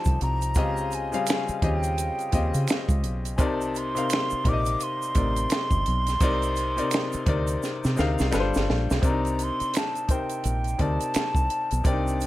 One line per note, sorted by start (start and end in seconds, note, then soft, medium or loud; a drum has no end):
0.00 0.58 F3 medium
0.00 0.56 C4 medium
0.00 0.58 D#4 medium
0.00 0.57 G4 medium
0.00 0.58 A4 medium
0.00 0.58 C#5 medium
0.00 0.57 D5 medium
0.00 0.58 D#5 medium
0.00 0.22 A5 medium
0.05 0.18 C2 medium
0.05 kick medium
0.05 closed hi-hat soft
0.05 shaker soft
0.21 0.57 C2 medium
0.21 0.96 A#5 medium
0.21 closed hi-hat medium
0.42 closed hi-hat soft
0.42 shaker soft
0.55 1.15 C#2 loud
0.55 1.01 C#3 medium
0.55 1.01 C4 medium
0.55 1.02 F4 medium
0.55 1.02 G4 medium
0.55 1.03 D#5 medium
0.55 kick loud
0.55 closed hi-hat medium
0.55 shaker medium
0.77 shaker soft
0.91 1.67 G#5 medium
0.91 closed hi-hat medium
0.91 shaker soft
1.12 1.54 C#3 medium
1.12 1.55 G3 medium
1.12 1.55 C4 medium
1.12 1.55 F4 medium
1.12 1.55 F5 medium
1.12 closed hi-hat medium
1.12 shaker soft
1.27 finger snap medium
1.27 closed hi-hat medium
1.27 shaker medium
1.30 finger snap medium
1.30 snare loud
1.48 muted fingered electric bass stroke medium
1.48 closed hi-hat soft
1.48 shaker soft
1.62 2.09 D#2 medium
1.62 2.23 C#3 medium
1.62 2.23 C4 medium
1.62 2.23 F4 medium
1.62 2.23 G4 medium
1.62 2.24 D#5 medium
1.62 kick medium
1.62 closed hi-hat medium
1.66 2.70 G5 medium
1.83 closed hi-hat soft
1.83 shaker soft
1.98 closed hi-hat medium
1.98 shaker medium
2.19 closed hi-hat soft
2.19 shaker soft
2.32 2.51 D#2 medium
2.32 3.23 C#3 medium
2.32 3.24 C4 medium
2.32 3.24 F4 medium
2.32 3.24 G4 medium
2.32 3.25 D#5 medium
2.32 kick medium
2.32 closed hi-hat medium
2.32 shaker soft
2.54 2.66 C#3 loud
2.54 closed hi-hat soft
2.54 shaker soft
2.68 finger snap medium
2.68 closed hi-hat medium
2.68 shaker medium
2.70 finger snap medium
2.70 snare loud
2.89 3.04 C#2 medium
2.89 kick loud
2.89 closed hi-hat soft
2.89 shaker soft
3.04 3.40 B1 medium
3.04 closed hi-hat medium
3.25 closed hi-hat soft
3.25 shaker soft
3.36 3.98 C2 medium
3.36 3.84 C3 loud
3.36 3.84 C4 medium
3.36 3.84 D#4 medium
3.36 3.85 A#4 medium
3.36 3.44 G#5 medium
3.36 kick loud
3.36 closed hi-hat medium
3.36 shaker medium
3.41 3.85 D5 medium
3.41 3.79 A5 medium
3.61 shaker soft
3.75 4.50 C6 loud
3.75 closed hi-hat medium
3.75 shaker soft
3.95 4.37 C3 medium
3.95 4.37 C4 medium
3.95 4.38 D#4 medium
3.95 4.38 A#4 medium
3.95 4.38 F5 medium
3.95 closed hi-hat medium
3.95 shaker soft
4.10 finger snap medium
4.10 closed hi-hat medium
4.10 shaker medium
4.13 finger snap medium
4.13 snare loud
4.30 muted fingered electric bass stroke soft
4.30 shaker soft
4.44 4.74 A#1 loud
4.44 5.05 C3 medium
4.44 5.05 C4 medium
4.44 5.06 D#4 medium
4.44 5.06 A#4 medium
4.44 4.53 D5 medium
4.44 kick medium
4.44 closed hi-hat medium
4.49 4.85 D6 loud
4.53 5.10 D#5 medium
4.65 closed hi-hat soft
4.65 shaker medium
4.80 8.34 C6 loud
4.80 closed hi-hat medium
4.80 shaker medium
5.02 shaker soft
5.15 5.45 A1 loud
5.15 6.06 C3 medium
5.15 6.06 C4 medium
5.15 6.07 D#4 medium
5.15 6.07 A#4 medium
5.15 6.07 D5 medium
5.15 kick medium
5.15 closed hi-hat medium
5.15 shaker soft
5.36 closed hi-hat soft
5.36 shaker soft
5.50 finger snap medium
5.50 closed hi-hat medium
5.50 shaker medium
5.52 finger snap medium
5.52 snare loud
5.71 5.83 G1 medium
5.71 kick medium
5.71 shaker soft
5.86 6.16 B1 loud
5.86 closed hi-hat medium
6.07 snare soft
6.07 closed hi-hat medium
6.07 shaker soft
6.20 6.80 C2 medium
6.20 6.66 C3 loud
6.20 6.67 C4 medium
6.20 6.67 D#4 medium
6.20 6.67 A#4 medium
6.20 6.68 D5 loud
6.20 kick loud
6.20 closed hi-hat medium
6.20 shaker medium
6.42 closed hi-hat soft
6.42 shaker soft
6.56 closed hi-hat medium
6.56 shaker soft
6.77 7.19 C3 medium
6.77 7.19 C4 medium
6.77 7.20 D#4 medium
6.77 7.20 A#4 medium
6.77 7.20 D5 medium
6.77 closed hi-hat soft
6.77 shaker soft
6.91 finger snap medium
6.91 closed hi-hat medium
6.91 shaker medium
6.94 finger snap medium
6.94 snare loud
7.13 muted fingered electric bass stroke soft
7.13 closed hi-hat soft
7.13 shaker soft
7.26 7.56 D2 medium
7.26 7.87 C3 medium
7.26 7.88 C4 medium
7.26 7.88 D#4 medium
7.26 7.88 A#4 medium
7.26 7.88 D5 medium
7.26 kick loud
7.26 closed hi-hat medium
7.47 closed hi-hat soft
7.47 shaker soft
7.63 snare soft
7.63 shaker medium
7.84 7.96 C3 medium
7.84 snare soft
7.84 shaker soft
7.96 8.16 D2 medium
7.96 8.32 C3 medium
7.96 8.32 C4 medium
7.96 8.33 D#4 medium
7.96 8.33 A#4 medium
7.96 8.33 F5 medium
7.96 snare medium
7.96 shaker soft
8.19 8.31 C2 medium
8.19 snare medium
8.19 shaker soft
8.31 8.51 G1 medium
8.31 8.93 G3 medium
8.31 8.93 D4 medium
8.31 8.93 F4 medium
8.31 8.93 A4 medium
8.31 8.41 B4 medium
8.31 finger snap medium
8.31 snare medium
8.31 shaker medium
8.40 8.97 C5 loud
8.54 8.67 G1 medium
8.54 snare medium
8.54 shaker soft
8.70 8.87 A#1 medium
8.70 snare medium
8.90 9.02 B1 medium
8.90 snare medium
8.90 shaker soft
9.02 9.50 C2 medium
9.02 9.94 C3 medium
9.02 9.94 C4 medium
9.02 9.11 D4 medium
9.02 9.95 A#4 medium
9.02 9.95 D5 medium
9.02 kick loud
9.02 closed hi-hat medium
9.02 shaker medium
9.06 9.97 D#4 medium
9.06 9.45 A#5 medium
9.25 closed hi-hat soft
9.25 shaker soft
9.39 closed hi-hat medium
9.39 shaker soft
9.44 9.78 C6 loud
9.60 muted fingered electric bass stroke soft
9.60 closed hi-hat soft
9.60 shaker soft
9.74 10.13 A5 medium
9.74 finger snap medium
9.74 snare loud
9.74 closed hi-hat medium
9.74 shaker medium
9.95 closed hi-hat soft
9.95 shaker soft
10.08 10.69 C3 medium
10.08 10.70 C4 medium
10.08 10.70 D#4 medium
10.08 10.70 A#4 medium
10.08 10.71 C5 medium
10.08 10.83 G5 medium
10.08 kick medium
10.08 closed hi-hat medium
10.08 shaker soft
10.29 closed hi-hat soft
10.29 shaker soft
10.44 10.74 A#1 medium
10.44 closed hi-hat medium
10.44 shaker medium
10.64 closed hi-hat soft
10.64 shaker soft
10.78 10.97 D2 medium
10.78 11.70 C3 medium
10.78 11.70 C4 medium
10.78 11.71 D#4 medium
10.78 11.71 A#4 medium
10.78 11.71 D5 medium
10.78 11.89 A5 loud
10.78 kick medium
10.78 closed hi-hat medium
11.01 closed hi-hat soft
11.01 shaker soft
11.14 finger snap medium
11.14 muted fingered electric bass stroke soft
11.14 snare loud
11.14 closed hi-hat medium
11.14 shaker medium
11.35 11.47 C2 medium
11.35 kick medium
11.35 shaker soft
11.50 closed hi-hat medium
11.71 11.84 B1 medium
11.71 closed hi-hat soft
11.71 shaker soft
11.84 12.27 C2 medium
11.84 12.27 C3 medium
11.84 12.27 C4 medium
11.84 11.93 D4 medium
11.84 12.27 A#4 medium
11.84 12.27 D5 loud
11.84 12.27 G5 medium
11.84 kick loud
11.84 closed hi-hat medium
11.84 shaker medium
11.92 12.27 D#4 medium
12.07 shaker soft
12.21 closed hi-hat medium
12.21 shaker soft